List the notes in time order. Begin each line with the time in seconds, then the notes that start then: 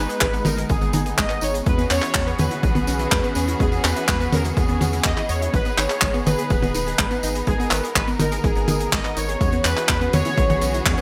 Already playing: G#3 B3 D#4 B4
0.09 G#4, closed hi-hat, tambourine
0.21 G#1 G#3 B4, kick, clap, closed hi-hat, tambourine
0.33 B3, closed hi-hat, tambourine
0.45 G#1 D#4 A#4, closed hi-hat, high tom, tambourine
0.57 G#4, closed hi-hat, tambourine
0.69 G#1 G#3 G#4, kick, closed hi-hat, tambourine
0.81 G#1 B3, closed hi-hat, tambourine
0.93 G#1 D#4, closed hi-hat, high tom, tambourine
1.06 G#4, closed hi-hat, tambourine
1.18 G#1 G#3 D#5, kick, clap, tambourine
1.29 B3, clap, closed hi-hat, tambourine
1.41 G#1 D#4 C#5, closed hi-hat, tambourine
1.54 G#4, closed hi-hat, tambourine
1.66 E2 E3 G#3 C#4 F#4 G#4 B4, kick, closed hi-hat, tambourine
1.78 B3, closed hi-hat, tambourine
1.90 E2 C#4 C#5, clap, closed hi-hat, tambourine
2.02 E4, clap, closed hi-hat, tambourine
2.14 E2 G#3, kick, clap, tambourine
2.27 B3, closed hi-hat, tambourine
2.38 E2 C#4 B4, closed hi-hat, high tom, tambourine
2.51 E4, closed hi-hat, tambourine
2.63 B1 G#3 B4, kick, closed hi-hat, tambourine
2.75 B1 B3, closed hi-hat, high tom, tambourine
2.87 B1 C#4, closed hi-hat, tambourine
2.99 E4, closed hi-hat, tambourine
3.12 E2 G#3, kick, clap, tambourine
3.24 B3, closed hi-hat, tambourine
3.35 E2 C#4, closed hi-hat, tambourine
3.47 E4, closed hi-hat, tambourine
3.60 E2 G#3 G#4, kick, closed hi-hat, tambourine
3.72 B3, closed hi-hat, tambourine
3.84 E2 C#4 B4, clap, closed hi-hat, tambourine
3.96 E4, closed hi-hat, tambourine
4.08 E2 G#3 B4, kick, clap, closed hi-hat, tambourine
4.20 B3, closed hi-hat, tambourine
4.33 E2 C#4 A#4, closed hi-hat, high tom, tambourine
4.44 E4, closed hi-hat, tambourine
4.57 E2 G#3 G#4, kick, closed hi-hat, tambourine
4.68 E2 B3, closed hi-hat, tambourine
4.81 E2 C#4, closed hi-hat, high tom, tambourine
4.93 E4, closed hi-hat, tambourine
5.04 E2 B3 D#5, kick, clap, closed hi-hat, tambourine
5.17 E4, clap, closed hi-hat, tambourine
5.29 E2 C#5, closed hi-hat, tambourine
5.41 E4, closed hi-hat, tambourine
5.54 G#1 G#3 D#4 G#4 B4, kick, closed hi-hat, tambourine
5.65 B3, closed hi-hat, tambourine
5.78 G#1 D#4 C#5, clap, closed hi-hat, tambourine
5.90 G#4, clap, closed hi-hat, tambourine
6.01 G#1 G#3, kick, clap, tambourine
6.14 B3, closed hi-hat, tambourine
6.26 G#1 D#4 B4, closed hi-hat, high tom, tambourine
6.38 G#4, closed hi-hat, tambourine
6.50 D#1 G#3 B4, kick, closed hi-hat, tambourine
6.63 D#1 B3, closed hi-hat, high tom, tambourine
6.74 D#1 D#4, closed hi-hat, tambourine
6.86 G#4, closed hi-hat, tambourine
6.98 G#1 G#3, kick, clap, closed hi-hat
7.11 B3, closed hi-hat, tambourine
7.23 G#1 D#4, closed hi-hat, tambourine
7.35 G#4, closed hi-hat, tambourine
7.47 G#1 G#3 G#4 A#4, kick, closed hi-hat, tambourine
7.60 B3, closed hi-hat, tambourine
7.71 G#1 D#4 B4, clap, closed hi-hat, tambourine
7.83 G#4, closed hi-hat, tambourine
7.96 G#1 G#3 B4, kick, clap, closed hi-hat, tambourine
8.07 B3, closed hi-hat, tambourine
8.20 G#1 D#4 A#4, closed hi-hat, high tom, tambourine
8.32 G#4, closed hi-hat, tambourine
8.44 G#1 G#3 G#4, kick, closed hi-hat, tambourine
8.55 G#1 B3, closed hi-hat, tambourine
8.68 G#1 D#4, closed hi-hat, high tom, tambourine
8.80 G#4, closed hi-hat, tambourine
8.92 G#1 G#3 D#5, kick, clap, tambourine
9.04 B3, clap, closed hi-hat, tambourine
9.16 G#1 D#4 C#5, closed hi-hat, tambourine
9.29 G#4, closed hi-hat, tambourine
9.41 E2 E3 G#3 B3 C#4 F#4 G#4, kick, closed hi-hat, tambourine
9.52 B3, closed hi-hat, tambourine
9.65 E2 C#4 B4, clap, closed hi-hat, tambourine
9.77 E4, clap, closed hi-hat
9.89 E2 G#3, kick, clap, closed hi-hat, tambourine
10.01 B3, closed hi-hat, tambourine
10.13 E2 C#4 C#5, closed hi-hat, high tom, tambourine
10.25 E4, closed hi-hat, tambourine
10.37 B1 G#3, kick, closed hi-hat, tambourine
10.49 B1 B3, closed hi-hat, high tom, tambourine
10.61 B1 C#4, closed hi-hat, tambourine
10.74 E4, closed hi-hat, tambourine
10.86 E2 G#3, kick, clap, closed hi-hat, tambourine
10.97 B3, closed hi-hat